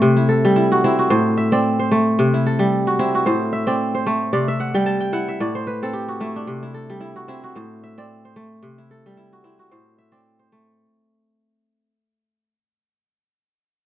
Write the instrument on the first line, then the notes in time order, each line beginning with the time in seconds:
kora
Already playing: A3 C4 E4 F#4 C5 D5 E5
0.02 C3
0.16 E4
0.29 A4
0.45 G3
0.56 E4
0.72 F#4
0.84 C4 E4
0.99 F#4
1.10 A2 C5
1.37 E5
1.52 C4 D5
1.79 C5
1.91 A3
2.19 C3
2.34 E4
2.46 A4
2.59 G3
2.87 F#4
2.99 C4 E4
3.15 F#4
3.26 A2 C5
3.53 E5
3.67 C4 D5
3.95 C5
4.06 A3
4.33 C3 D5
4.48 E5
4.60 F#5
4.74 G3 G5
4.86 A5
5.00 G5
5.13 E4 F#5
5.28 E5
5.40 A2 D5
5.55 C5
5.67 B4
5.83 C4 A4
5.93 G4
6.08 F#4
6.21 A3 E4
6.36 D4
6.47 C3
6.63 E4
6.74 A4
6.90 G3
7.00 E4
7.16 F#4
7.28 C4 E4
7.44 F#4
7.55 A2 C5
7.84 E5
7.98 C4 D5
8.25 C5
8.36 A3
8.63 C3
8.78 E4
8.91 A4
9.06 G3
9.17 E4
9.33 F#4
9.44 C4 E4
9.59 F#4
9.71 A2 C5
9.98 E5
10.12 C4 D5
10.39 C5
10.52 A3